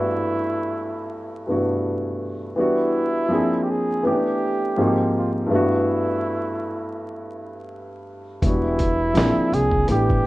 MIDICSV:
0, 0, Header, 1, 6, 480
1, 0, Start_track
1, 0, Tempo, 731707
1, 1683, Time_signature, 4, 2, 24, 8
1, 6734, End_track
2, 0, Start_track
2, 0, Title_t, "Flugelhorn"
2, 0, Program_c, 0, 56
2, 0, Note_on_c, 0, 64, 98
2, 1181, Note_off_c, 0, 64, 0
2, 1705, Note_on_c, 0, 64, 103
2, 2383, Note_on_c, 0, 67, 69
2, 2392, Note_off_c, 0, 64, 0
2, 2429, Note_on_c, 0, 68, 96
2, 2438, Note_off_c, 0, 67, 0
2, 2656, Note_off_c, 0, 68, 0
2, 2664, Note_on_c, 0, 67, 101
2, 3347, Note_off_c, 0, 67, 0
2, 3386, Note_on_c, 0, 65, 68
2, 3489, Note_off_c, 0, 65, 0
2, 3623, Note_on_c, 0, 64, 87
2, 5027, Note_off_c, 0, 64, 0
2, 5535, Note_on_c, 0, 64, 107
2, 6255, Note_on_c, 0, 68, 116
2, 6265, Note_off_c, 0, 64, 0
2, 6489, Note_off_c, 0, 68, 0
2, 6495, Note_on_c, 0, 67, 105
2, 6734, Note_off_c, 0, 67, 0
2, 6734, End_track
3, 0, Start_track
3, 0, Title_t, "Upright piano"
3, 0, Program_c, 1, 0
3, 0, Control_c, 1, 64, 127
3, 0, Note_on_c, 1, 43, 70
3, 0, Note_on_c, 1, 52, 67
3, 0, Note_on_c, 1, 57, 63
3, 0, Note_on_c, 1, 59, 55
3, 0, Note_on_c, 1, 62, 66
3, 0, Note_on_c, 1, 66, 81
3, 928, Note_off_c, 1, 43, 0
3, 934, Note_off_c, 1, 52, 0
3, 940, Note_off_c, 1, 57, 0
3, 945, Note_off_c, 1, 59, 0
3, 950, Note_off_c, 1, 62, 0
3, 956, Note_off_c, 1, 66, 0
3, 964, Note_on_c, 1, 43, 52
3, 969, Note_on_c, 1, 52, 48
3, 973, Note_on_c, 1, 57, 44
3, 979, Note_on_c, 1, 59, 49
3, 984, Note_on_c, 1, 62, 49
3, 991, Note_on_c, 1, 66, 60
3, 1669, Note_off_c, 1, 52, 0
3, 1679, Note_on_c, 1, 52, 69
3, 1681, Note_off_c, 1, 59, 0
3, 1684, Note_off_c, 1, 43, 0
3, 1687, Note_on_c, 1, 55, 58
3, 1688, Note_off_c, 1, 57, 0
3, 1690, Note_off_c, 1, 62, 0
3, 1691, Control_c, 1, 64, 0
3, 1691, Note_on_c, 1, 59, 67
3, 1697, Note_off_c, 1, 66, 0
3, 1700, Note_on_c, 1, 62, 58
3, 1707, Note_on_c, 1, 66, 68
3, 1801, Control_c, 1, 64, 127
3, 2155, Note_on_c, 1, 53, 65
3, 2161, Note_off_c, 1, 52, 0
3, 2163, Note_on_c, 1, 58, 55
3, 2165, Note_off_c, 1, 55, 0
3, 2167, Note_off_c, 1, 59, 0
3, 2168, Note_off_c, 1, 62, 0
3, 2170, Note_on_c, 1, 60, 62
3, 2172, Control_c, 1, 64, 0
3, 2175, Note_off_c, 1, 66, 0
3, 2177, Note_on_c, 1, 62, 57
3, 2184, Note_on_c, 1, 68, 73
3, 2289, Control_c, 1, 64, 127
3, 2639, Note_off_c, 1, 53, 0
3, 2643, Note_off_c, 1, 58, 0
3, 2644, Note_on_c, 1, 52, 70
3, 2647, Note_off_c, 1, 60, 0
3, 2650, Note_off_c, 1, 62, 0
3, 2650, Note_on_c, 1, 57, 62
3, 2651, Control_c, 1, 64, 0
3, 2653, Note_off_c, 1, 68, 0
3, 2656, Note_on_c, 1, 59, 60
3, 2665, Note_on_c, 1, 61, 46
3, 2670, Note_on_c, 1, 67, 75
3, 2704, Note_off_c, 1, 61, 0
3, 2707, Note_on_c, 1, 62, 57
3, 2781, Control_c, 1, 64, 127
3, 3123, Note_off_c, 1, 52, 0
3, 3127, Note_off_c, 1, 57, 0
3, 3127, Note_on_c, 1, 44, 71
3, 3130, Note_off_c, 1, 59, 0
3, 3131, Note_on_c, 1, 53, 66
3, 3133, Control_c, 1, 64, 0
3, 3137, Note_off_c, 1, 67, 0
3, 3138, Note_on_c, 1, 58, 67
3, 3141, Note_on_c, 1, 60, 59
3, 3148, Note_on_c, 1, 63, 56
3, 3153, Note_on_c, 1, 66, 61
3, 3155, Note_off_c, 1, 62, 0
3, 3188, Note_off_c, 1, 66, 0
3, 3196, Note_on_c, 1, 67, 69
3, 3234, Control_c, 1, 64, 127
3, 3587, Note_on_c, 1, 43, 66
3, 3599, Note_on_c, 1, 52, 58
3, 3605, Note_off_c, 1, 44, 0
3, 3607, Note_off_c, 1, 53, 0
3, 3611, Note_off_c, 1, 58, 0
3, 3611, Control_c, 1, 64, 0
3, 3611, Note_on_c, 1, 57, 65
3, 3612, Note_off_c, 1, 60, 0
3, 3616, Note_off_c, 1, 63, 0
3, 3620, Note_on_c, 1, 59, 69
3, 3631, Note_on_c, 1, 62, 55
3, 3640, Note_off_c, 1, 67, 0
3, 3642, Note_on_c, 1, 66, 81
3, 3732, Control_c, 1, 64, 127
3, 5489, Note_off_c, 1, 43, 0
3, 5495, Note_off_c, 1, 52, 0
3, 5501, Note_off_c, 1, 57, 0
3, 5506, Note_off_c, 1, 59, 0
3, 5511, Note_off_c, 1, 62, 0
3, 5516, Note_off_c, 1, 66, 0
3, 5524, Note_on_c, 1, 52, 60
3, 5532, Control_c, 1, 64, 0
3, 5533, Note_on_c, 1, 54, 45
3, 5540, Note_on_c, 1, 59, 57
3, 5547, Note_on_c, 1, 62, 47
3, 5554, Note_on_c, 1, 66, 64
3, 5576, Note_on_c, 1, 55, 47
3, 5578, Note_off_c, 1, 54, 0
3, 5641, Control_c, 1, 64, 127
3, 5995, Note_on_c, 1, 53, 58
3, 6003, Note_on_c, 1, 58, 54
3, 6004, Note_off_c, 1, 52, 0
3, 6006, Note_off_c, 1, 62, 0
3, 6008, Note_on_c, 1, 60, 59
3, 6012, Note_off_c, 1, 59, 0
3, 6012, Control_c, 1, 64, 0
3, 6016, Note_on_c, 1, 62, 59
3, 6018, Note_off_c, 1, 66, 0
3, 6023, Note_on_c, 1, 68, 59
3, 6029, Note_off_c, 1, 55, 0
3, 6137, Control_c, 1, 64, 127
3, 6477, Note_on_c, 1, 52, 64
3, 6479, Note_off_c, 1, 53, 0
3, 6482, Note_on_c, 1, 57, 58
3, 6483, Note_off_c, 1, 58, 0
3, 6486, Note_off_c, 1, 60, 0
3, 6487, Note_off_c, 1, 62, 0
3, 6490, Control_c, 1, 64, 0
3, 6490, Note_on_c, 1, 59, 58
3, 6493, Note_off_c, 1, 68, 0
3, 6496, Note_on_c, 1, 62, 53
3, 6505, Note_on_c, 1, 67, 77
3, 6610, Control_c, 1, 64, 127
3, 6734, Note_off_c, 1, 52, 0
3, 6734, Note_off_c, 1, 57, 0
3, 6734, Note_off_c, 1, 59, 0
3, 6734, Note_off_c, 1, 62, 0
3, 6734, Note_off_c, 1, 67, 0
3, 6734, End_track
4, 0, Start_track
4, 0, Title_t, "Upright bass"
4, 0, Program_c, 2, 32
4, 5525, Note_on_c, 2, 28, 90
4, 5980, Note_off_c, 2, 28, 0
4, 6005, Note_on_c, 2, 34, 88
4, 6137, Note_off_c, 2, 34, 0
4, 6247, Note_on_c, 2, 36, 74
4, 6473, Note_off_c, 2, 36, 0
4, 6485, Note_on_c, 2, 33, 85
4, 6712, Note_off_c, 2, 33, 0
4, 6734, End_track
5, 0, Start_track
5, 0, Title_t, "Muted upright bass strokes"
5, 6146, Note_on_c, 9, 29, 51
5, 6211, Note_off_c, 9, 29, 0
5, 6734, End_track
6, 0, Start_track
6, 0, Title_t, "Drums"
6, 5525, Note_on_c, 9, 36, 113
6, 5527, Note_on_c, 9, 42, 76
6, 5590, Note_off_c, 9, 36, 0
6, 5593, Note_off_c, 9, 42, 0
6, 5766, Note_on_c, 9, 42, 63
6, 5773, Note_on_c, 9, 36, 86
6, 5832, Note_off_c, 9, 42, 0
6, 5839, Note_off_c, 9, 36, 0
6, 6003, Note_on_c, 9, 42, 78
6, 6018, Note_on_c, 9, 38, 114
6, 6025, Note_on_c, 9, 39, 88
6, 6069, Note_off_c, 9, 42, 0
6, 6084, Note_off_c, 9, 38, 0
6, 6091, Note_off_c, 9, 39, 0
6, 6255, Note_on_c, 9, 42, 60
6, 6320, Note_off_c, 9, 42, 0
6, 6373, Note_on_c, 9, 36, 79
6, 6438, Note_off_c, 9, 36, 0
6, 6480, Note_on_c, 9, 42, 77
6, 6546, Note_off_c, 9, 42, 0
6, 6624, Note_on_c, 9, 36, 86
6, 6689, Note_off_c, 9, 36, 0
6, 6734, End_track
0, 0, End_of_file